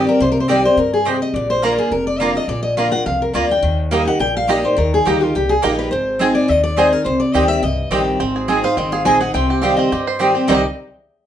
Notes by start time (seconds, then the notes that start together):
Already playing: G2
0.07 C4 G4 A#4
0.20 C2 C3 C5
0.32 A#4
0.40 C5
0.48 D#3 G3 C4 G4 D5 D#5 G5
0.64 C4 G4 C5
0.77 G2 A#4
0.93 G#4
1.05 C3 C4 G4 C5 D#5 G5
1.22 D#5
1.34 A#1 A#2 D5
1.50 C5
1.62 D3 A#3 D4 F4 A#4 D5 A#5
1.78 G#4
1.91 F1 F2 A#4
2.07 D5
2.20 D3 A#3 D4 F4 D5 F5 A#5
2.35 D4 F4 D#5
2.48 A#1 A#2 D5
2.63 D#5
2.77 D3 A#3 D4 F4 D5 F5 A#5
2.92 D4 F4 F#5
3.06 C2 F2 F5
3.22 A#4
3.33 D2 D3 A#3 D4 F4 D5 A#5
3.49 D4 F4 G5
3.62 D#2 D#3
3.91 G3 A#3 D#4 G4 D#5 A#5
4.05 D#4 G4 F#5
4.19 A#1 A#2 G5
4.37 F5
4.47 G3 A#3 D#4 G4 D5 D#5 A#5
4.64 D#4 G4 C5
4.77 D#2 D#3 A#4
4.94 G#4
5.05 D2 G3 A#3 D#4 G4 D#5 A#5
5.20 D#4 F4 G4
5.35 C2 A#2 G4
5.49 G#4
5.62 A#1 G3 A#3 D#4 G4 A#4 D#5 A#5
5.79 B4
5.91 G#1 G#2 C5
6.19 G#3 C4 D#4 G#4 D#5 G#5
6.35 D5
6.48 D#2 D#3 D#5
6.64 D5
6.77 G#3 C4 D#4 G#4 C5 D#5 G#5
6.93 D#4 G#4 A#4
7.05 C2 C3 C5
7.20 D5
7.33 D2 D#3 G3 C4 G4 D#5 G5
7.48 E5
7.63 C2 G2 D#5
7.91 A#1 D#3 G3 C4 G4 D#5 G5
8.20 G#1 G#2 C4
8.36 G#4
8.48 G#3 C4 D#4 G#4 D#5 G#5
8.63 D#4 G#4 C5 F5
8.77 G#1 D#3 C4 D#5
8.92 G#4 F5
9.05 A#1 G#3 C4 D#4 G#4 D#5 G#5
9.20 D#4 G#4 F#5
9.34 C2 C3 C4 G5
9.50 G4
9.61 D#3 G3 C4 G4 D#5 F5 G5
9.77 C4 D#5
9.92 G2 G4
10.07 C5
10.19 D#3 G3 C4 G4 D#5 G5
10.35 C4 G4
10.47 C2 C3 D#3 G3 C4 G4 D#5 G5
10.52 D#4 G4